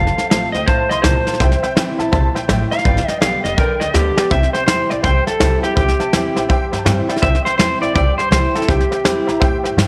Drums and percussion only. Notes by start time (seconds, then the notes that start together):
0.07 snare
0.18 snare
0.31 snare, hi-hat pedal
0.54 snare
0.68 kick, snare
0.91 snare
1.04 snare, hi-hat pedal
1.27 snare
1.34 snare
1.40 kick, snare
1.52 snare
1.63 snare
1.77 snare, hi-hat pedal
1.99 snare
2.13 kick, snare
2.36 snare
2.49 snare, hi-hat pedal
2.72 snare
2.79 snare
2.85 kick, snare
2.97 snare
3.08 snare
3.22 snare, hi-hat pedal
3.45 snare
3.58 kick, snare
3.81 snare
3.94 snare, hi-hat pedal
4.18 snare
4.31 kick, snare
4.43 snare
4.54 snare
4.68 snare, hi-hat pedal
4.91 snare
5.04 kick, snare
5.27 snare
5.40 snare, hi-hat pedal
5.64 snare
5.77 kick, snare
5.88 snare
6.00 snare
6.13 snare, hi-hat pedal
6.36 snare
6.50 kick, snare
6.73 snare
6.86 snare, hi-hat pedal
7.09 snare
7.16 snare
7.23 kick, snare
7.35 snare
7.46 snare
7.59 snare, hi-hat pedal
7.83 snare
7.96 kick, snare
8.19 snare
8.32 snare, hi-hat pedal
8.55 snare
8.62 snare
8.69 kick, snare
8.81 snare
8.92 snare
9.05 snare, hi-hat pedal
9.29 snare
9.42 kick, snare
9.65 snare
9.78 snare, hi-hat pedal